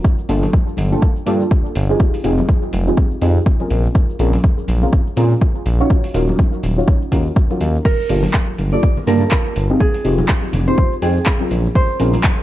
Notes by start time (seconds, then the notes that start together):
0.05 kick, cabasa
0.18 cabasa
0.29 G1 A#3 D4 F4 G4 A4, open hi-hat, cabasa
0.43 open hi-hat, high conga, cabasa
0.53 kick, cabasa
0.68 cabasa
0.77 G1, open hi-hat, high conga, cabasa
0.91 A#3 D4 F4 G4 A4, cabasa
1.02 kick, cabasa
1.16 cabasa
1.26 G2 A#3 D4 F4 G4 A4, open hi-hat, cabasa
1.40 cabasa
1.51 kick, cabasa
1.66 cabasa
1.75 G1, open hi-hat, cabasa
1.89 C4 D#4 F4 G4 G#4, cabasa
1.99 kick, cabasa
2.14 open hi-hat, cabasa
2.23 F1 C4 D#4 F4 G4 G#4, open hi-hat, cabasa
2.38 high conga, cabasa
2.49 kick, cabasa
2.62 cabasa
2.73 F1, open hi-hat, high conga, cabasa
2.87 C4 D#4 F4 G4 G#4, cabasa
2.97 kick, cabasa
3.11 cabasa
3.22 F2 C4 D#4 F4 G4 G#4, open hi-hat, cabasa
3.36 cabasa
3.46 kick, cabasa
3.60 C4 C#4 F4 G#4 A#4, high conga, cabasa
3.70 A#1, open hi-hat, cabasa
3.85 cabasa
3.95 kick, cabasa
4.10 cabasa
4.19 A#1 C4 C#4 F4 G#4 A#4, open hi-hat, cabasa
4.33 open hi-hat, high conga, cabasa
4.44 kick, cabasa
4.58 cabasa
4.68 A#1, open hi-hat, high conga, cabasa
4.82 C4 C#4 F4 G#4 A#4, cabasa
4.93 kick, cabasa
5.07 cabasa
5.16 A#2 C4 C#4 F4 G#4 A#4, open hi-hat, cabasa
5.31 cabasa
5.41 kick, cabasa
5.55 cabasa
5.66 A#1, open hi-hat, cabasa
5.79 C#4 D#4 F4 F#4 C#5, cabasa
5.90 kick, cabasa
6.04 open hi-hat, cabasa
6.14 D#1 C#4 D#4 F4 F#4 A#4, open hi-hat, cabasa
6.27 high conga, cabasa
6.39 kick, cabasa
6.53 cabasa
6.63 D#1, open hi-hat, high conga, cabasa
6.77 C#4 D#4 F4 F#4 C#5, cabasa
6.88 kick, cabasa
7.02 cabasa
7.12 D#2 C#4 D#4 F4 F#4 A#4, kick, open hi-hat, cabasa
7.26 cabasa
7.36 kick, cabasa
7.50 C#4 D#4 F4 F#4 A#4, high conga, cabasa
7.61 D#2, open hi-hat, cabasa
7.75 cabasa
7.85 A#4, kick, crash, cabasa
8.00 cabasa
8.09 G1 A#3 D4 F4 G4 A4, open hi-hat, cabasa
8.23 open hi-hat, high conga, cabasa
8.34 kick, clap, cabasa
8.48 cabasa
8.58 G1, open hi-hat, high conga, cabasa
8.72 A#3 D4 F4 G4 A4 D5, cabasa
8.83 kick, cabasa
8.97 low conga, cabasa
9.06 G2 A#3 D4 F4 G4 A#4 A5, open hi-hat, low conga, cabasa
9.21 high bongo, cabasa
9.31 kick, clap, cabasa
9.45 cabasa
9.56 G1, open hi-hat, cabasa
9.69 C4 D#4 F4 G4 G#4, high bongo, cabasa
9.80 G#4, kick, cabasa
9.94 open hi-hat, cabasa
10.04 F1 C4 D#4 F4 G4 G#4, open hi-hat, cabasa
10.18 high conga, cabasa
10.29 kick, clap, cabasa
10.43 cabasa
10.53 F1, open hi-hat, high conga, low conga, cabasa
10.67 C4 D#4 F4 G4 G#4 C5, cabasa
10.78 kick, cabasa
10.92 cabasa
11.02 F2 C4 D#4 F4 G#4 G5, open hi-hat, cabasa
11.17 cabasa
11.26 kick, clap, cabasa
11.40 C4 C#4 F4 G#4 A#4, high conga, cabasa
11.51 A#1, open hi-hat, cabasa
11.66 cabasa
11.75 C5, kick, cabasa
11.90 cabasa
11.99 A#1 C4 C#4 F4 G#4 A#4, open hi-hat, cabasa
12.13 open hi-hat, high conga, cabasa
12.24 kick, clap, cabasa
12.38 cabasa